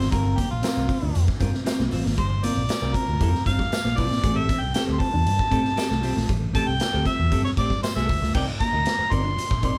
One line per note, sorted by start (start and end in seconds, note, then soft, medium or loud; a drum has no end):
0.00 0.10 G#1 medium
0.00 0.10 C4 medium
0.00 0.11 C5 medium
0.00 muted clean electric guitar stroke soft
0.00 snare soft
0.12 0.43 G1 loud
0.12 0.23 G3 medium
0.12 0.36 C4 medium
0.12 0.36 F4 medium
0.12 0.39 A#4 medium
0.12 0.37 A#4 loud
0.12 kick loud
0.12 closed hi-hat medium
0.12 tambourine soft
0.25 muted clean electric guitar stroke soft
0.37 0.49 A#3 medium
0.37 0.50 G4 medium
0.37 kick medium
0.37 closed hi-hat medium
0.37 tambourine soft
0.51 0.62 A#1 medium
0.51 1.24 F4 medium
0.51 muted clean electric guitar stroke medium
0.62 0.87 C4 loud
0.62 0.88 F4 loud
0.62 0.88 A#4 loud
0.62 muted clean electric guitar stroke soft
0.62 snare loud
0.62 closed hi-hat loud
0.62 tambourine loud
0.77 0.87 C2 medium
0.89 1.00 C4 medium
0.89 muted clean electric guitar stroke medium
0.89 kick medium
0.89 open hi-hat medium
0.89 tambourine soft
1.02 1.13 D2 medium
1.02 1.13 D4 medium
1.02 muted clean electric guitar stroke soft
1.15 1.26 F2 medium
1.15 muted clean electric guitar stroke soft
1.15 closed hi-hat medium
1.15 tambourine medium
1.27 muted clean electric guitar stroke soft
1.27 kick medium
1.27 snare soft
1.40 1.51 G2 loud
1.40 1.58 C4 medium
1.40 1.52 C4 medium
1.40 1.53 F4 medium
1.40 1.51 A#4 loud
1.40 kick medium
1.40 closed hi-hat medium
1.40 tambourine medium
1.53 muted clean electric guitar stroke soft
1.53 snare soft
1.64 1.83 C4 medium
1.64 1.79 F4 loud
1.64 1.77 A#4 medium
1.64 snare loud
1.64 closed hi-hat medium
1.64 tambourine loud
1.79 1.90 C2 medium
1.79 1.91 A#3 medium
1.79 muted clean electric guitar stroke soft
1.79 snare soft
1.91 2.03 A1 medium
1.91 2.06 C4 medium
1.91 2.05 F4 medium
1.91 2.04 C5 medium
1.91 muted clean electric guitar stroke soft
1.91 open hi-hat medium
1.91 tambourine medium
2.04 2.18 G#1 medium
2.04 2.16 A#3 medium
2.04 muted clean electric guitar stroke medium
2.04 snare soft
2.18 2.49 G1 loud
2.18 2.29 G3 medium
2.18 2.46 C5 medium
2.18 kick loud
2.18 closed hi-hat medium
2.43 2.55 A#3 medium
2.43 2.61 C4 medium
2.43 2.62 F4 medium
2.43 2.62 A#4 medium
2.43 2.96 D5 medium
2.43 closed hi-hat loud
2.43 tambourine medium
2.56 2.67 A#1 medium
2.56 muted clean electric guitar stroke medium
2.69 muted clean electric guitar stroke soft
2.69 snare loud
2.69 closed hi-hat medium
2.69 tambourine loud
2.82 2.93 C2 medium
2.82 2.93 C4 medium
2.82 2.94 F4 medium
2.82 2.95 A#4 medium
2.94 3.06 C4 medium
2.94 3.46 A#4 medium
2.94 muted clean electric guitar stroke soft
2.94 kick medium
2.94 closed hi-hat medium
2.94 tambourine soft
3.08 3.18 D2 medium
3.08 muted clean electric guitar stroke soft
3.20 3.31 F2 loud
3.20 3.32 G3 medium
3.20 3.41 C4 medium
3.20 3.34 F4 medium
3.20 3.32 A#4 medium
3.20 kick medium
3.20 closed hi-hat medium
3.20 tambourine medium
3.33 muted clean electric guitar stroke soft
3.33 snare soft
3.46 3.57 G2 loud
3.46 3.60 C4 medium
3.46 3.59 F4 medium
3.46 3.58 C5 medium
3.46 3.99 F5 loud
3.46 kick medium
3.46 closed hi-hat medium
3.46 tambourine medium
3.59 3.70 G3 medium
3.59 muted clean electric guitar stroke medium
3.59 kick medium
3.59 snare soft
3.72 snare loud
3.72 closed hi-hat medium
3.72 tambourine loud
3.85 3.98 A#1 medium
3.85 3.96 A#3 medium
3.85 muted clean electric guitar stroke soft
3.85 snare soft
3.97 4.11 B1 medium
3.97 4.18 C4 medium
3.97 4.10 F4 medium
3.97 4.10 C5 medium
3.97 4.38 D5 loud
3.97 muted clean electric guitar stroke soft
3.97 kick medium
3.97 open hi-hat medium
3.97 tambourine medium
4.10 4.21 A#1 medium
4.10 4.22 A#3 medium
4.10 muted clean electric guitar stroke medium
4.10 snare soft
4.22 4.55 A1 loud
4.22 4.35 A3 medium
4.22 4.47 C4 medium
4.22 4.47 G4 medium
4.22 4.48 A4 loud
4.22 kick loud
4.22 closed hi-hat medium
4.22 tambourine soft
4.37 4.63 E5 loud
4.37 muted clean electric guitar stroke soft
4.49 4.61 C4 medium
4.49 kick loud
4.49 closed hi-hat loud
4.49 tambourine soft
4.61 4.73 C2 medium
4.61 4.74 G5 medium
4.61 muted clean electric guitar stroke soft
4.74 4.99 C4 loud
4.74 4.99 G4 loud
4.74 5.00 A4 loud
4.74 4.83 G5 loud
4.74 muted clean electric guitar stroke soft
4.74 snare loud
4.74 closed hi-hat loud
4.74 tambourine loud
4.89 4.99 D2 medium
4.93 5.02 C6 medium
5.00 5.12 C4 medium
5.00 6.29 A5 loud
5.00 muted clean electric guitar stroke soft
5.00 kick medium
5.00 open hi-hat medium
5.13 5.24 E2 medium
5.13 5.25 D4 medium
5.13 muted clean electric guitar stroke medium
5.26 5.37 G2 loud
5.26 muted clean electric guitar stroke soft
5.26 closed hi-hat medium
5.26 tambourine medium
5.39 muted clean electric guitar stroke medium
5.39 kick medium
5.39 snare soft
5.51 5.62 A2 loud
5.51 5.69 C4 medium
5.51 5.63 C4 medium
5.51 5.64 G4 medium
5.51 5.63 A4 loud
5.51 kick medium
5.51 closed hi-hat medium
5.51 tambourine medium
5.64 muted clean electric guitar stroke soft
5.64 snare soft
5.76 5.95 C4 medium
5.76 5.90 G4 loud
5.76 5.88 A4 medium
5.76 snare loud
5.76 closed hi-hat medium
5.76 tambourine loud
5.89 6.04 C2 medium
5.89 6.02 A3 medium
5.89 muted clean electric guitar stroke medium
5.89 snare soft
6.02 6.14 B1 medium
6.02 6.17 C4 medium
6.02 6.16 G4 medium
6.02 6.15 C5 medium
6.02 muted clean electric guitar stroke medium
6.02 open hi-hat medium
6.02 tambourine medium
6.16 6.27 A#1 medium
6.16 6.28 A3 medium
6.16 muted clean electric guitar stroke medium
6.16 snare soft
6.29 6.60 A1 loud
6.29 6.40 G3 medium
6.29 kick loud
6.29 closed hi-hat medium
6.29 tambourine soft
6.54 6.66 A3 medium
6.54 6.72 C4 medium
6.54 6.73 G4 medium
6.54 6.73 A4 medium
6.54 6.69 A5 loud
6.54 kick medium
6.54 closed hi-hat medium
6.54 tambourine medium
6.67 6.79 C2 medium
6.67 7.06 G5 loud
6.67 muted clean electric guitar stroke soft
6.80 muted clean electric guitar stroke medium
6.80 snare loud
6.80 closed hi-hat medium
6.80 tambourine loud
6.93 7.04 D2 medium
6.93 7.05 C4 medium
6.93 7.06 G4 medium
6.93 7.07 A4 medium
7.06 7.17 C4 medium
7.06 7.42 E5 loud
7.06 kick medium
7.06 closed hi-hat medium
7.06 tambourine soft
7.20 7.30 E2 loud
7.20 muted clean electric guitar stroke medium
7.32 7.42 G2 loud
7.32 7.43 G3 medium
7.32 7.50 C4 medium
7.32 7.46 G4 medium
7.32 7.44 A4 medium
7.32 kick loud
7.32 closed hi-hat medium
7.32 tambourine medium
7.45 7.51 C#5 medium
7.45 muted clean electric guitar stroke soft
7.45 snare soft
7.57 7.68 A2 medium
7.57 7.72 C4 medium
7.57 7.72 G4 medium
7.57 7.71 C5 medium
7.57 7.82 D5 loud
7.57 kick medium
7.57 closed hi-hat medium
7.57 tambourine medium
7.70 7.82 G3 medium
7.70 muted clean electric guitar stroke medium
7.70 kick medium
7.70 snare soft
7.83 7.95 C5 medium
7.83 muted clean electric guitar stroke soft
7.83 snare loud
7.83 closed hi-hat medium
7.83 tambourine loud
7.96 8.10 C2 medium
7.96 8.08 A3 medium
7.96 8.08 C4 medium
7.96 8.08 G4 medium
7.96 8.09 A4 medium
7.96 8.32 E5 loud
7.96 snare soft
8.09 8.20 D2 medium
8.09 muted clean electric guitar stroke soft
8.09 kick medium
8.09 open hi-hat medium
8.09 tambourine medium
8.22 8.32 C#2 loud
8.22 8.33 A3 medium
8.22 muted clean electric guitar stroke soft
8.22 snare soft
8.35 8.45 C2 loud
8.35 8.46 C4 medium
8.35 8.52 D#4 medium
8.35 8.48 A#4 loud
8.35 8.46 D5 loud
8.35 8.46 G5 medium
8.35 kick loud
8.35 crash loud
8.47 muted clean electric guitar stroke soft
8.60 8.72 A#3 medium
8.60 9.14 A#5 loud
8.60 muted clean electric guitar stroke soft
8.60 kick loud
8.60 closed hi-hat medium
8.73 8.84 D2 medium
8.73 8.84 D#4 medium
8.73 8.85 A#4 medium
8.73 8.86 D#5 medium
8.85 muted clean electric guitar stroke soft
8.85 snare loud
8.85 closed hi-hat medium
8.98 muted clean electric guitar stroke soft
8.98 muted fingered electric bass stroke soft
9.11 9.32 G1 medium
9.11 9.23 C4 medium
9.11 9.29 D#4 medium
9.11 9.25 A#4 medium
9.11 9.23 D5 medium
9.11 9.64 C6 loud
9.11 kick medium
9.11 closed hi-hat medium
9.24 9.36 D4 medium
9.24 muted clean electric guitar stroke medium
9.38 muted fingered electric bass stroke soft
9.38 closed hi-hat medium
9.51 9.71 A#1 medium
9.51 muted clean electric guitar stroke soft
9.51 kick medium
9.51 snare soft
9.63 9.75 C4 medium
9.63 9.78 D#4 medium
9.63 9.76 A#4 medium
9.63 9.74 D5 medium
9.63 9.78 C6 loud
9.63 kick medium
9.63 closed hi-hat medium